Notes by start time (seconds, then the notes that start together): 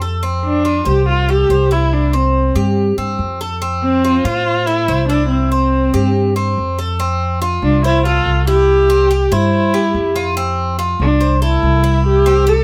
Already playing: F2
0.02 A4
0.23 C4
0.45 D4
0.65 F4
0.85 C2 G4 C5
1.09 F4
1.29 G4 A4
1.49 C2 C5
1.71 E4
1.93 D4
2.13 C4 C5
2.55 G2 G4
2.98 G2 C4
3.19 F2
3.41 A4
3.62 C4
3.83 C4
4.05 F4
4.25 A2 F4 C5
4.66 E4 A4
4.88 C2 C5
5.09 D4 E4
5.30 C4
5.52 C5
5.94 G2 G4
6.36 C4
6.58 F2
6.79 A4
7.00 C4
7.42 F4
7.62 C2 D4
7.84 E4 C5
8.05 F4 A4
8.26 C2
8.47 E4 G4
8.90 C4
9.11 G4
9.32 G2 E4 C5
9.74 G4
9.94 F2
10.16 F4
10.37 C4
10.79 F4
11.00 C2 D4
11.21 C5
11.42 E4 A4
11.63 C2
11.84 E4
12.07 G4
12.26 C4
12.47 G4 A4